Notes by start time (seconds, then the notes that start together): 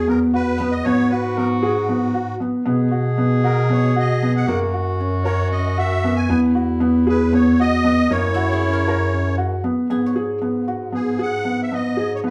Already playing: E2 A#3 F#4
0.08 B3 A#4
0.34 F#4 B4
0.58 B3
0.72 D#5
0.84 G#2 B3 F#4 C#5
1.10 F#4 B4
1.37 B3 A#4
1.62 F#4 G#4
1.89 B3
2.14 F#4
2.40 B3
2.66 B2 B3 G#4
2.91 F#4
3.18 B3
3.44 F#4 A#4
3.70 B3 C#5
3.96 F#4 D#5
4.23 B3
4.36 F#5
4.47 F#2 A#3 F#4
4.73 F#4
5.00 C#4
5.24 A#4 C#5
5.52 C#4 D#5
5.78 F#4 E5
6.04 B3
6.17 G#5
6.29 E2 B3 E4
6.55 F#4
6.80 B3
7.07 G#4 B4
7.33 B3 C#5
7.60 F#4 D#5
7.84 B3
8.10 F#2 A#3 E4 C#5
8.34 E4 F#4
8.52 G#4
8.62 C#4
8.73 A#4
8.88 A#4
9.13 C#4
9.38 F#4
9.64 B3
9.90 G#2 B3 G#4
10.06 C#5
10.16 G#4
10.42 B3
10.68 F#4
10.92 B3 G#4
11.19 G#4 F#5
11.45 B3
11.62 E5
11.72 B3 D#5
11.97 G#4
12.15 C#5
12.24 B3 B4